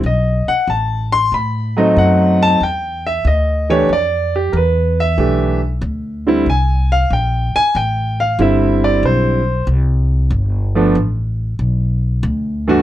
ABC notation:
X:1
M:4/4
L:1/8
Q:"Swing" 1/4=93
K:Am
V:1 name="Grand piano"
^d ^f a c' b d f a | g e _e _d =d G [_B=B] =e- | e z3 _a f g a | g f e d c2 z2 |
z8 |]
V:2 name="Grand piano"
z4 z [^F,A,C^D]3 | z3 [E,A,DG] z4 | [E,A,DG] z2 [D,G,CE] z4 | z2 [D,G,CE]3 z3 |
z [F,A,B,D] z4 z [G,,E,A,D^F] |]
V:3 name="Upright bass" clef=bass
B,,, z A,,,2 A,,2 ^F,,2 | E,,2 D,,2 F,,2 E,,2 | B,,,2 D,,2 C,,2 _B,,, z | A,,,2 G,,,2 B,,,2 C,,2 |
G,,,2 A,,,2 B,,,2 D,,2 |]